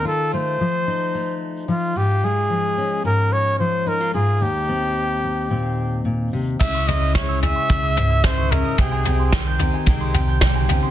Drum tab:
CC |--------|--------|--------|x-------|
SD |--------|--------|--------|--o---o-|
FT |--------|--------|--------|oooooooo|
BD |--------|--------|--------|o-o-o-o-|

CC |--------|
SD |--o---o-|
FT |oooooooo|
BD |o-o-o-o-|